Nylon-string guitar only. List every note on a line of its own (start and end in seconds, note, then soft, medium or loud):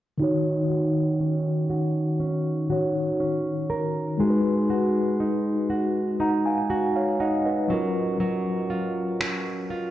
0.20 4.20 D#3 medium
0.70 1.69 F#4 medium
1.20 2.19 C#4 medium
1.70 2.70 F#4 medium
2.20 3.19 C#4 medium
2.70 4.70 F#4 medium
3.20 4.30 C#4 medium
3.70 4.30 A#4 medium
4.20 7.80 G#3 medium
4.70 5.69 F#4 medium
5.20 6.19 D#4 medium
5.70 6.70 F#4 medium
6.20 7.19 D#4 medium
6.70 8.70 F#4 medium
7.20 7.80 D#4 medium
7.70 8.20 F#3 medium
8.20 9.91 F#3 medium
8.70 9.69 F4 medium
9.20 9.91 C#4 medium
9.70 9.91 F4 medium